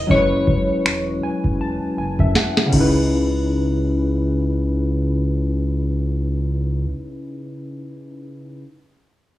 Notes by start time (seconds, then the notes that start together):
Already playing: D#5
0.07 F#1 F#3 C#4 E4 C#5, kick
0.13 G#3 B4
0.47 kick
0.85 E1, finger snap
1.23 G#5
1.44 E1, kick
1.61 A5
1.97 F#1 G#5
2.19 F#2 E5, kick
2.35 F#5, snare
2.57 snare
2.66 C#3 C#4
2.72 C#2 D#4, kick, crash
2.77 E4 B4